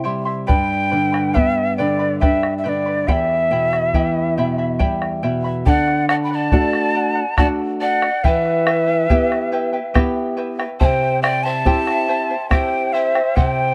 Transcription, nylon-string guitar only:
0.00 0.44 C3 medium
0.06 0.48 G3 soft
0.49 3.04 G2 medium
0.92 1.34 D3 medium
1.36 1.78 B3 medium
1.80 2.21 D3 medium
2.22 2.64 D4 soft
2.66 3.07 D3 medium
3.08 5.62 E2 medium
3.51 3.93 B2 medium
3.94 4.36 E3 soft
4.37 4.79 B2 soft
4.79 5.22 G3 soft
5.23 5.65 B2 soft
5.66 6.50 D3 medium
6.53 7.21 A3 medium
6.53 7.21 D4 soft
6.53 7.21 F#4 medium
7.38 8.07 A3 soft
7.38 8.07 D4 soft
7.38 8.07 F#4 soft
8.24 9.07 E3 medium
9.10 9.78 B3 medium
9.10 9.78 E4 soft
9.10 9.79 G4 medium
9.95 10.63 B3 soft
9.95 10.64 E4 soft
9.95 10.64 G4 medium
10.81 11.64 C3 medium
11.65 12.34 C4 medium
11.65 12.34 E4 soft
11.65 12.34 G4 medium
12.50 13.19 C4 soft
12.50 13.19 E4 soft
12.50 13.20 G4 soft
13.37 13.74 C3 medium

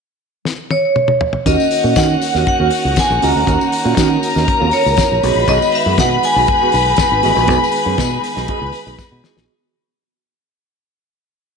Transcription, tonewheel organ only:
1.46 9.45 D#3 medium
1.46 5.19 A#3 medium
1.46 5.19 C#4 medium
1.46 5.19 F#4 medium
5.23 9.45 G#3 medium
5.23 9.45 B3 medium
5.23 7.22 F#4 medium
7.22 9.46 G#4 medium

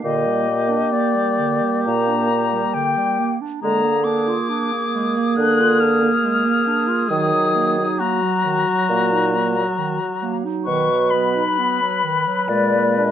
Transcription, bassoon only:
0.04 0.77 A#2 medium
1.87 2.61 A#2 medium
3.64 4.35 D3 medium
5.37 6.10 D3 medium
7.11 7.85 D#3 medium
8.90 9.64 A#2 medium
10.67 11.43 B2 medium
12.49 13.11 A#2 medium

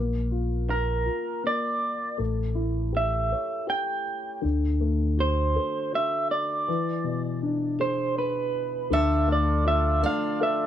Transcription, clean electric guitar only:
0.70 1.46 A#4 medium
1.47 2.17 D5 medium
2.97 3.66 E5 medium
3.70 4.40 G5 medium
5.20 5.95 C5 medium
5.95 6.31 E5 medium
6.31 8.51 D5 medium
7.81 8.18 C5 medium
8.18 8.95 B4 medium
8.94 9.31 E5 medium
9.32 9.67 D5 medium
9.68 10.02 E5 medium
10.06 10.39 F5 medium
10.43 10.66 E5 medium

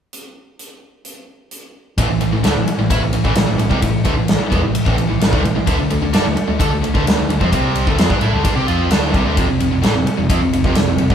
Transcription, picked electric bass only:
1.97 2.08 A1 loud
2.09 2.20 A1 medium
2.21 2.31 A1 medium
2.32 2.43 A1 medium
2.44 2.54 D2 medium
2.55 2.66 A1 medium
2.78 2.89 A1 medium
2.90 3.00 A2 medium
3.00 3.12 A1 medium
3.13 3.24 A1 medium
3.24 3.34 A1 medium
3.35 3.46 A1 medium
3.46 3.57 A1 medium
3.58 3.69 A1 medium
3.71 3.82 C2 medium
3.83 4.04 A1 medium
4.05 4.15 D2 loud
4.16 4.38 A1 medium
4.52 4.61 E2 loud
4.62 4.84 A1 medium
4.87 4.97 A1 medium
4.97 5.07 A1 medium
5.08 5.19 A1 medium
5.19 5.31 A1 medium
5.33 5.43 D2 medium
5.44 5.55 A1 medium
5.55 5.66 A1 medium
5.67 5.78 D2 medium
5.79 5.90 D2 medium
5.91 6.01 D2 medium
6.03 6.13 D2 medium
6.14 6.24 G2 medium
6.26 6.36 D2 medium
6.48 6.59 D2 medium
6.60 6.70 D3 medium
6.73 6.83 D2 medium
6.84 6.94 D2 medium
6.95 7.05 D2 medium
7.07 7.17 D2 medium
7.18 7.29 D2 medium
7.30 7.40 D2 medium
7.41 7.51 F2 medium
7.53 7.85 C2 medium
7.87 7.98 D2 loud
7.99 8.09 F2 loud
8.10 8.21 G2 medium
8.21 8.32 A2 medium
8.33 8.44 D2 loud
8.45 8.55 G2 medium
8.56 8.67 C3 medium
8.68 8.90 F2 medium
8.91 9.13 D2 medium
9.14 9.25 C2 medium
9.25 9.36 D2 medium
9.38 9.48 F1 medium
9.48 9.59 F1 medium
9.60 9.71 F1 medium
9.72 9.82 F1 medium
9.82 9.94 A1 medium
9.95 10.06 F1 medium
10.19 10.29 F1 medium
10.30 10.40 F2 medium
10.42 10.52 F1 medium
10.53 10.64 F1 medium
10.64 10.75 F1 medium
10.77 10.87 F1 medium
10.87 10.98 F1 medium
11.00 11.10 F1 medium
11.10 11.15 G1 medium

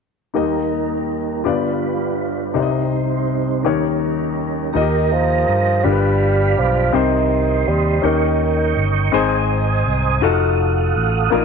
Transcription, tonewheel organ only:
0.34 4.70 G3 soft
0.34 1.44 A#3 soft
0.34 1.44 D#4 soft
0.34 1.44 A#4 soft
1.45 2.54 D4 soft
1.45 2.54 F4 soft
1.45 2.54 B4 soft
2.55 3.64 C4 soft
2.55 4.72 D#4 soft
2.55 3.64 C5 soft
3.63 4.73 C#4 soft
3.63 4.72 A#4 medium
4.73 7.99 G4 medium
4.73 5.83 A#4 soft
4.73 5.83 D#5 soft
4.73 5.82 A#5 medium
5.83 6.92 D5 soft
5.83 6.92 F5 soft
5.83 6.92 B5 medium
6.93 8.02 C5 soft
6.93 10.19 D#5 soft
6.93 8.02 C6 medium
8.04 9.12 A#4 medium
8.04 9.12 G5 medium
8.04 9.12 C#6 medium
9.14 10.22 C5 medium
9.14 10.22 G#5 soft
9.14 11.30 D#6 medium
10.24 11.31 A4 medium
10.24 11.45 F5 medium
10.24 11.31 F#5 medium
11.34 11.45 A#4 soft
11.34 11.45 D#5 soft
11.34 11.45 D#6 medium

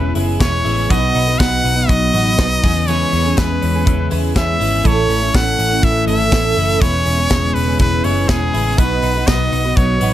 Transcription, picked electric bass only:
0.00 0.11 E1 loud
0.16 0.36 F#1 medium
0.41 0.61 E1 loud
0.65 0.86 A1 medium
0.90 1.11 B1 loud
1.15 1.35 B1 medium
1.40 1.60 B1 loud
1.64 1.85 B1 loud
1.89 2.10 B1 loud
2.14 2.34 A1 medium
2.39 2.59 B1 loud
2.63 3.04 E2 medium
3.13 3.33 E2 medium
3.38 3.58 E2 loud
3.63 3.83 E2 loud
3.87 4.07 E2 loud
4.12 4.32 E2 medium
4.36 4.56 E2 loud
4.60 4.80 G#1 medium
4.85 5.05 A1 loud
5.08 5.29 A1 medium
5.34 5.54 A1 medium
5.59 5.79 A1 loud
5.83 6.03 A1 medium
6.07 6.27 G#1 medium
6.32 6.52 A1 loud
6.57 6.77 F#1 medium
6.82 7.02 E1 loud
7.06 7.26 E1 medium
7.31 7.51 E1 medium
7.55 7.76 E1 medium
7.79 8.00 E1 loud
8.05 8.25 F#1 medium
8.29 8.49 E1 loud
8.54 8.74 A1 medium
8.79 8.99 B1 loud
9.03 9.23 B1 medium
9.27 9.48 B1 loud
9.52 9.72 B1 medium
9.77 9.97 B1 loud
10.01 10.13 A1 medium

